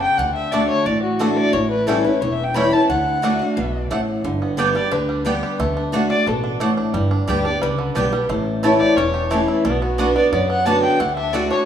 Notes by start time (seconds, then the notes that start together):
Already playing: C#3
0.02 G5
0.18 D2 D3 F#5
0.35 E5
0.51 D3 A3 D4 F#4 D5 F#5
0.69 C#5
0.86 A1 A2 D5
1.02 F#4
1.19 D3 A3 D4 F#4 A4 D5 F#5
1.36 D5
1.53 A1 A2 C#5
1.70 B4
1.87 E3 G3 A3 C#4 E4 A4 C#5 G5
2.04 C#4 E4 B4
2.21 E1 E2 C#5
2.32 E5
2.44 G5
2.54 E3 G3 A3 C#4 E4 C#5 G5 B5
2.71 C#4 E4 A5
2.89 D2 D3 F#5
3.22 D3 A3 D4 F#4 D5 F#5
3.39 D4 F#4
3.57 B1 B2
3.90 A1 A2 A3 D4 F#4 D5 F#5
4.24 G1 G2 D3
4.42 B3
4.57 D3 G3 B3 G4 D5 G5
4.75 G3 B3 G4 D5
4.91 D2 D3 D4 B4
5.09 G3
5.25 D3 G3 B3 G4 D5 G5
5.43 G4
5.59 D2 D3 A3
5.77 D4
5.92 D3 A3 D4 F#4 D5 F#5
6.10 D4 F#4 D5
6.26 A1 B2 D4 A4
6.44 D4
6.60 A2 A3 F#4 D5 F#5
6.77 D4
6.93 G1 G2 G3
7.11 D4
7.28 D2 D3 G3 B3 G4 D5 G5
7.45 B3 D4 G4 D5
7.61 C#2 D3 G3 B4
7.79 D3
7.95 B1 D3 G3 B3 D4 G4 D5 G5
8.12 G3 B3 G4
8.29 A1 A2 A3
8.63 E3 A3 C#4 E4 C#5 A5
8.79 G4 D5
8.96 E1 E2 C#4 C#5
9.14 G4
9.30 E3 A3 C#4 E4 C#5 A5
9.48 E4
9.65 B1 B2 A3 D5
9.72 B3
9.82 B3 F#4
9.98 D3 B3 D4 F#4 B4 D5 F#5
10.15 B3 D4 F#4 D5
10.32 F#2 B3 D5
10.49 B3 F#5
10.66 D3 B3 D4 F#4 D5 F#5 A5
10.83 D4 G5
11.00 D2 D3 A3 F#5
11.16 D4 E5
11.33 D3 A3 D4 F#4 D5 F#5
11.50 D4 F#4 C#5